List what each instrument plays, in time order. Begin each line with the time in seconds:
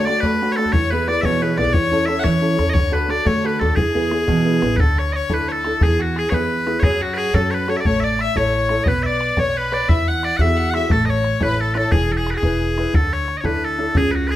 0.00 fiddle C#5
0.05 upright piano A3 D4, bagpipes D5, fiddle D5, bodhran
0.09 upright piano F#4
0.20 upright piano A3, bagpipes B4, bodhran
0.25 fiddle B4
0.42 upright piano A3 D4 F#4
0.52 bagpipes C#5
0.56 upright piano A3 D4 F#4, bagpipes A4, fiddle A4, bodhran
0.65 bodhran
0.72 upright bass E2, upright piano E3, bagpipes C#5, fiddle C#5, bodhran
0.90 upright piano B3 E4 G#4, bagpipes B4, fiddle B4, bodhran
1.08 upright piano B3 E4 G#4, bagpipes D5, fiddle D5, bodhran
1.21 upright piano B2, upright bass E3, bagpipes C#5 E5, bodhran
1.26 fiddle C#5
1.42 upright piano B3 E4 G#4, bagpipes B4
1.57 upright bass B1, upright piano B3 E4 G#4, bagpipes D5, fiddle D5, bodhran
1.66 bodhran
1.73 upright bass E2, upright piano E3, bagpipes C#5, bodhran
1.77 fiddle C#5
1.92 upright piano C#4 E4 A4, bodhran
2.06 upright piano C#4 E4 A4, bagpipes E5, fiddle E5, bodhran
2.19 bagpipes F#5
2.24 upright piano E3, upright bass E3, bagpipes C#5, fiddle C#5, bodhran
2.41 upright piano C#4 E4 A4
2.58 upright bass E2, upright piano C#4 E4 A4, bodhran
2.67 bagpipes D#5, bodhran
2.74 upright bass D2, upright piano D3, bagpipes C#5, bodhran
2.78 fiddle C#5
2.92 upright piano D4 F#4 A4, bagpipes B4, fiddle B4, bodhran
3.08 upright piano D4 F#4 A4, bagpipes D5, fiddle D5, bodhran
3.25 upright bass D3, upright piano A3, fiddle C#5, bagpipes C#5, bodhran
3.44 upright piano D4 F#4 A4, fiddle B4, bagpipes B4
3.60 upright bass D#2, upright piano D4 F#4 A4, bagpipes A4, fiddle A4, bodhran
3.69 bodhran
3.76 upright bass E2, upright piano E3, bagpipes G#4, fiddle G#4, bodhran
3.95 upright piano B3 E4 G#4, bodhran
4.11 upright piano B3 E4 G#4, bodhran
4.27 upright piano B2, upright bass E3, bodhran
4.45 upright piano B3 E4 G#4
4.62 upright bass A1, upright piano B3 E4 G#4, bodhran
4.70 bodhran
4.77 upright bass D2, upright piano D3, bagpipes A4 B4, fiddle A4, bodhran
4.96 fiddle C#5, bagpipes C#5, bodhran
5.12 fiddle C#5, bagpipes C#5 D#5, bodhran
5.30 upright bass D2, upright piano D4 E4 A4, fiddle B4, bagpipes B4, bodhran
5.48 fiddle A4, bagpipes C#5
5.52 bagpipes A4
5.65 upright piano D4 E4 A4, bodhran
5.81 upright bass E2, upright piano E3, fiddle G#4, bagpipes G#4, bodhran
5.99 fiddle F#4, bagpipes F#4, bodhran
6.16 fiddle G#4, bagpipes G#4, bodhran
6.30 upright bass E2, upright piano B3 E4 G#4, fiddle B4, bagpipes C#5, bodhran
6.34 bagpipes B4
6.67 upright piano B3 E4 G#4, bodhran
6.79 upright bass F#2, upright piano F#3, bagpipes C#5, bodhran
6.84 fiddle G#4, bagpipes G#4
7.02 fiddle F#4, bagpipes F#4, bodhran
7.14 bagpipes G#4 B4, bodhran
7.34 upright bass F#2, upright piano C#4 F#4 A4, fiddle A4, bagpipes A4, bodhran
7.51 fiddle B4, bagpipes B4 C#5
7.68 upright piano C#4 F#4 A4, fiddle C#5, bagpipes C#5, bodhran
7.77 bagpipes D5 E5
7.85 upright bass A1, upright piano A3, bagpipes C#5, fiddle C#5, bodhran
8.00 fiddle D5, bagpipes E5, bodhran
8.04 bagpipes D5
8.19 bagpipes E5, fiddle E5, bodhran
8.36 upright bass A1, upright piano E4 A4 C#5, bagpipes C#5, fiddle C#5, bodhran
8.69 upright piano E4 A4 C#5, bodhran
8.84 upright bass B1, upright piano B3, bagpipes D#5, bodhran
8.88 bagpipes B4, fiddle B4
9.03 fiddle D5, bagpipes D5 E5, bodhran
9.21 bodhran
9.37 upright bass B1, upright piano B4 C#5 D5, bagpipes C#5, fiddle C#5, bodhran
9.57 fiddle B4, bagpipes B4
9.72 upright piano B4 C#5 D5, bagpipes D5, bodhran
9.88 upright bass E2, upright piano E3, bagpipes E5, fiddle E5, bodhran
10.07 fiddle F#5, bagpipes F#5, bodhran
10.23 bagpipes D5, bodhran
10.37 upright bass E2, upright piano E4 F#4, fiddle E5, bagpipes F#5, bodhran
10.41 upright piano G#4, bagpipes E5
10.57 fiddle F#5
10.70 bagpipes F#5, bodhran
10.74 upright piano E4 F#4 G#4, bagpipes E5, fiddle E5
10.90 upright bass A1, upright piano A3, fiddle A4, bagpipes A4, bodhran
11.05 fiddle C#5, bagpipes D#5, bodhran
11.10 bagpipes C#5
11.24 bodhran
11.41 upright bass A1, upright piano E4 A4 C#5, bagpipes B4, fiddle B4, bodhran
11.61 bagpipes A4, fiddle A4
11.74 upright piano E4 A4 C#5, bagpipes A4 B4, bodhran
11.78 fiddle A4
11.92 upright bass E1, upright piano E3, bagpipes G#4, fiddle G#4, bodhran
12.10 bagpipes A4, bodhran
12.17 bagpipes G#4, fiddle G#4
12.27 bodhran
12.31 bagpipes F#4 B4
12.37 bagpipes G#4, fiddle G#4
12.42 upright bass E1, upright piano E4 G#4 B4, bodhran
12.78 upright piano E4 G#4 B4, bodhran
12.93 upright bass D2, upright piano D3, bagpipes A4, bodhran
13.12 bagpipes C#5, bodhran
13.28 bodhran
13.37 bagpipes C#5 D#5
13.43 upright bass D2, upright piano D4 E4 A4, bagpipes B4, bodhran
13.65 bagpipes A4
13.78 upright piano D4 E4 A4
13.95 upright bass C#2, upright piano C#3, bagpipes G#4, bodhran
14.12 bagpipes F#4 B4, bodhran
14.27 bagpipes G#4 B4, bodhran